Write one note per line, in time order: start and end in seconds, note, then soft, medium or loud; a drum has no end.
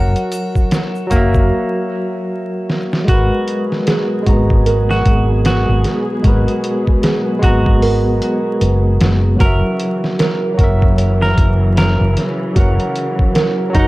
0.00 0.13 F#1 loud
0.00 0.17 F#3 medium
0.00 0.18 F#4 medium
0.00 1.51 F#4 medium
0.00 0.19 A#4 medium
0.00 1.16 E5 medium
0.00 0.20 F#5 medium
0.16 closed hi-hat soft
0.16 shaker soft
0.32 closed hi-hat medium
0.32 triangle medium
0.32 shaker medium
0.55 kick medium
0.55 shaker soft
0.71 snare loud
0.71 closed hi-hat medium
0.71 shaker soft
0.95 shaker soft
1.07 1.48 F#3 medium
1.07 1.50 F#4 medium
1.11 1.51 F#1 medium
1.11 2.96 A#3 medium
1.11 1.52 A#4 medium
1.11 kick medium
1.11 closed hi-hat medium
1.11 shaker medium
1.16 1.53 E5 medium
1.34 kick loud
1.34 shaker soft
2.70 snare medium
2.93 snare medium
3.04 3.29 G#1 medium
3.04 9.36 B2 medium
3.04 4.21 G#3 medium
3.04 4.22 F#4 medium
3.04 9.36 G#4 medium
3.04 kick loud
3.04 closed hi-hat medium
3.08 9.36 F#3 medium
3.08 9.36 B3 medium
3.08 3.84 F#4 medium
3.08 3.65 F#4 loud
3.08 4.24 A#4 medium
3.14 4.26 B4 medium
3.48 closed hi-hat medium
3.72 snare soft
3.87 4.63 G#4 medium
3.87 snare loud
3.87 closed hi-hat medium
4.23 5.03 G#1 medium
4.23 6.18 G#3 medium
4.23 6.20 F#4 medium
4.23 kick loud
4.23 closed hi-hat medium
4.29 6.23 B3 medium
4.29 6.22 A#5 medium
4.50 kick loud
4.66 4.92 A#4 loud
4.66 closed hi-hat medium
4.90 5.41 F#4 medium
4.90 snare soft
5.05 5.64 G#1 medium
5.05 kick medium
5.05 closed hi-hat medium
5.45 6.02 F#4 medium
5.45 5.83 B4 medium
5.45 snare loud
5.45 closed hi-hat medium
5.69 5.83 G#1 medium
5.84 snare soft
5.84 closed hi-hat medium
6.23 6.45 G#1 medium
6.23 6.49 G#3 medium
6.23 7.00 F#4 medium
6.23 6.50 F#4 medium
6.23 6.51 A#4 medium
6.23 kick loud
6.23 closed hi-hat medium
6.28 6.52 B4 medium
6.48 closed hi-hat soft
6.64 closed hi-hat medium
6.87 kick medium
7.03 7.79 G#4 medium
7.03 snare loud
7.03 closed hi-hat medium
7.39 8.19 G#1 medium
7.39 9.34 G#3 medium
7.39 9.36 F#4 medium
7.39 kick medium
7.39 closed hi-hat medium
7.44 9.28 F#4 medium
7.44 9.38 A#5 medium
7.48 9.39 B3 loud
7.66 kick loud
7.82 8.08 A#4 medium
7.82 open hi-hat medium
8.22 closed hi-hat medium
8.61 8.97 F#1 medium
8.61 8.99 B4 medium
8.61 closed hi-hat medium
9.01 9.37 F#1 medium
9.01 snare loud
9.01 closed hi-hat medium
9.36 13.88 C#3 medium
9.36 13.88 E3 medium
9.36 10.53 F#3 medium
9.36 13.88 F#3 medium
9.36 10.54 F#4 medium
9.40 9.61 F#1 loud
9.40 10.16 F#4 medium
9.40 9.96 A#4 loud
9.40 10.56 A#4 medium
9.40 kick loud
9.40 closed hi-hat medium
9.46 10.57 E5 medium
9.79 closed hi-hat medium
10.04 snare soft
10.19 10.95 A#4 medium
10.19 snare loud
10.19 closed hi-hat medium
10.54 12.50 F#3 medium
10.54 12.52 F#4 medium
10.59 11.34 F#1 medium
10.59 12.53 A#4 medium
10.59 kick loud
10.59 closed hi-hat medium
10.64 12.55 E5 medium
10.82 kick loud
10.98 11.24 C#5 loud
10.98 closed hi-hat medium
11.22 11.73 A#4 loud
11.22 snare soft
11.38 11.96 F#1 medium
11.38 kick medium
11.38 closed hi-hat medium
11.77 12.33 A#4 medium
11.77 12.15 E5 medium
11.77 snare loud
11.77 closed hi-hat medium
12.01 12.15 F#1 medium
12.17 snare soft
12.17 closed hi-hat medium
12.55 12.77 F#1 medium
12.55 12.81 F#3 medium
12.55 13.32 F#4 medium
12.55 12.82 F#4 medium
12.55 12.83 A#4 medium
12.55 kick loud
12.55 closed hi-hat medium
12.59 12.83 F#5 medium
12.80 closed hi-hat soft
12.96 closed hi-hat medium
13.19 kick medium
13.35 13.88 A#4 medium
13.35 snare loud
13.35 closed hi-hat medium
13.70 13.88 F#3 loud
13.70 13.88 F#4 medium
13.74 13.88 F#1 medium
13.74 13.88 D#4 medium
13.74 13.88 A#4 medium
13.74 kick medium
13.74 closed hi-hat medium
13.80 13.88 F#5 loud